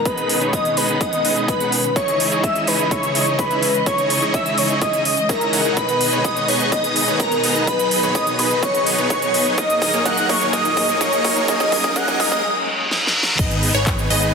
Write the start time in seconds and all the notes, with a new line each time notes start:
Already playing: B2 D#3 G#3
0.05 B3 C#4 D#4 G#4 B4 D#5, kick, closed hi-hat
0.18 closed hi-hat
0.29 open hi-hat
0.41 B3 D#4 G#4 B4 C#5, closed hi-hat
0.53 D#5, kick, closed hi-hat
0.65 closed hi-hat
0.77 B3 D#4 G#4 B4 D#5, open hi-hat
0.89 closed hi-hat
1.01 B3 D#4 G#4 B4 D#5 F#5, kick, closed hi-hat
1.13 closed hi-hat
1.25 B3 D#4 G#4 B4 D#5, open hi-hat
1.37 closed hi-hat
1.48 B4, kick, closed hi-hat
1.60 B3 D#4 G#4 B4 F#5, closed hi-hat
1.72 open hi-hat
1.84 closed hi-hat
1.96 C#3 E3 D#4 E4 G#4 C#5 D#5, kick, closed hi-hat
2.08 closed hi-hat
2.20 open hi-hat
2.32 D#4 E4 G#4 C#5 D#5, closed hi-hat
2.44 E5, kick, closed hi-hat
2.56 closed hi-hat
2.67 D#4 E4 G#4 B4 C#5 D#5, open hi-hat
2.79 closed hi-hat
2.91 D#4 E4 G#4 C#5 E5, kick, closed hi-hat
3.03 closed hi-hat
3.15 D#4 E4 G#4 C#5 D#5, open hi-hat
3.27 closed hi-hat
3.39 B4, kick, closed hi-hat
3.51 D#4 E4 G#4 C#5 E5, closed hi-hat
3.63 open hi-hat
3.74 closed hi-hat
3.86 D#4 E4 G#4 C#5 D#5, kick, closed hi-hat
3.98 closed hi-hat
4.10 open hi-hat
4.22 D#4 E4 G#4 C#5 D#5, closed hi-hat
4.34 E5, kick, closed hi-hat
4.46 closed hi-hat
4.58 D#4 E4 G#4 C#5 D#5, open hi-hat
4.70 closed hi-hat
4.82 D#4 E4 G#4 C#5 D#5 E5, kick, closed hi-hat
4.93 closed hi-hat
5.05 open hi-hat
5.17 closed hi-hat
5.29 D#4 E4 G#4 A#4 C#5 E5, kick, closed hi-hat
5.41 closed hi-hat
5.53 D#4 E4 G#4 C#5 F#5, open hi-hat
5.65 D#4 E4 G#4 C#5 F#5, closed hi-hat
5.77 B2 D#3 B3 D#4 G#4 B4 D#5, kick, closed hi-hat, riser
5.89 closed hi-hat
6.01 open hi-hat
6.12 B3 D#4 G#4 B4 C#5, closed hi-hat
6.25 D#5, kick, closed hi-hat
6.37 closed hi-hat
6.48 B3 D#4 G#4 B4 C#5 D#5, open hi-hat
6.60 closed hi-hat
6.72 B3 D#4 G#4 B4 D#5, kick, closed hi-hat
6.84 closed hi-hat
6.96 open hi-hat
7.08 B3 D#4 G#4 B4 C#5, closed hi-hat
7.20 A#4, kick, closed hi-hat
7.32 closed hi-hat
7.44 B3 D#4 G#4 B4 D#5, open hi-hat
7.56 closed hi-hat
7.67 F#3 B3 D#4 G#4 B4 D#5, kick, closed hi-hat
7.79 closed hi-hat
7.91 open hi-hat
8.03 B3 D#4 G#4 B4 C#5, closed hi-hat
8.15 D#5, kick, closed hi-hat
8.27 closed hi-hat
8.39 B3 D#4 G#4 B4 D#5, open hi-hat
8.51 closed hi-hat
8.63 B3 D#4 G#4 B4 C#5 D#5, kick, closed hi-hat
8.75 closed hi-hat
8.87 open hi-hat
8.98 B3 D#4 G#4 B4 C#5, closed hi-hat
9.10 C#5, kick, closed hi-hat
9.22 closed hi-hat
9.34 B3 D#4 G#4 B4 D#5, open hi-hat
9.46 closed hi-hat
9.58 A#2 F#3 A#3 D#4 G#4 A#4 D#5, kick, closed hi-hat
9.70 closed hi-hat
9.82 kick, open hi-hat
9.94 A#3 D#4 G#4 A#4 C#5, closed hi-hat
10.05 A#3 D#4 G#4 A#4 D#5 F#5, kick, closed hi-hat
10.17 closed hi-hat
10.29 C#5, kick, open hi-hat
10.41 A#3 D#4 G#4 A#4 C#5, closed hi-hat
10.53 A#3 D#4 G#4 A#4 D#5, kick, closed hi-hat
10.65 closed hi-hat
10.77 kick, open hi-hat
10.89 A#3 D#4 G#4 A#4 C#5, closed hi-hat
11.01 A#3 D#4 G#4 A#4 C#5 D#5, kick, closed hi-hat
11.13 closed hi-hat
11.25 kick, open hi-hat
11.36 A#3 D#4 G#4 A#4 C#5, closed hi-hat
11.48 A#3 C#4 D#4 G#4 A#4 D#5, kick, closed hi-hat
11.60 kick, closed hi-hat
11.72 A#3 D#4 G#4 A#4 D#5, kick, open hi-hat
11.84 kick, closed hi-hat
11.96 A#3 D#4 G#4 A#4 D#5 F#5, kick, closed hi-hat
12.08 kick, closed hi-hat
12.20 A#3 D#4 G#4 A#4 D#5, kick, open hi-hat
12.32 kick
12.44 reverse cymbal
12.91 snare
13.07 snare
13.23 snare
13.39 G#1 B3 D#4 G#4 B4 D#5, kick, closed hi-hat, crash
13.51 closed hi-hat
13.63 open hi-hat
13.74 G#1 B3 D#4 G#4 B4 C#5, closed hi-hat
13.87 kick, clap, closed hi-hat
13.99 closed hi-hat
14.10 G#1 B3 D#4 G#4 B4 D#5, open hi-hat
14.22 closed hi-hat